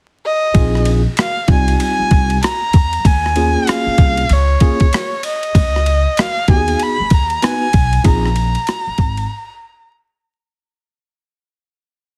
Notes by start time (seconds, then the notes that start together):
0.26 D#5
0.54 A#1 C4 D#4 F4 G#4, kick, ride
0.75 cross-stick
0.85 ride
1.17 F5, cross-stick, hi-hat pedal, ride
1.47 C2 G3 C4 D#4 F4 G#5, kick, ride
1.68 ride
1.80 G#5, ride
2.00 muted upright bass stroke
2.11 C2, kick, ride
2.30 ride
2.43 A#5, cross-stick, hi-hat pedal, ride
2.73 E2, kick, ride
2.93 ride
3.05 D#2 G#5, kick, ride
3.26 cross-stick
3.36 A#3 C#4 F4 G#4, ride
3.67 F5, cross-stick, hi-hat pedal, ride
3.86 muted upright bass stroke
3.98 C2, kick, ride
4.17 ride
4.29 C#2 C#5, ride
4.60 A#3 C#4 F4 G#4, kick, ride
4.80 kick, ride
4.93 cross-stick, hi-hat pedal, ride
5.23 D#5, ride
5.43 ride
5.55 C#2, kick, ride
5.76 cross-stick
5.86 ride
6.17 F5, cross-stick, hi-hat pedal, ride
6.48 D#2 B3 D#4 F#4 G4 G#5, kick, ride
6.56 G#4
6.68 ride
6.79 B5, ride
7.00 muted upright bass stroke
7.10 D#2 A#5, kick, ride
7.30 ride
7.42 B3 D#4 F#4 B4 G#5, cross-stick, hi-hat pedal, ride
7.73 B1, kick, ride
7.93 ride
8.04 A#1 C4 D#4 F4 G#4 A#5, kick, ride
8.26 cross-stick
8.36 ride
8.55 ride
8.67 cross-stick, hi-hat pedal, ride
8.87 muted upright bass stroke
8.98 G#1, kick, ride
9.17 ride